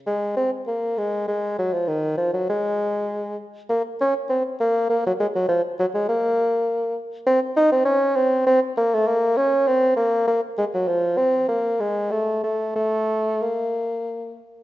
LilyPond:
\new Staff \with { instrumentName = "Bassoon" } { \time 3/4 \key aes \mixolydian \tempo 4 = 100 aes8 c'8 bes8 aes8 aes8 ges16 f16 | ees8 f16 ges16 aes4. r8 | bes8 des'8 c'8 bes8 bes16 ges16 aes16 ges16 | f8 ges16 aes16 bes4. r8 |
\key bes \minor c'8 ees'16 c'16 des'8 c'8 c'8 bes16 a16 | bes8 des'8 c'8 bes8 bes8 aes16 ges16 | f8 c'8 bes8 aes8 a8 a8 | a4 bes4. r8 | }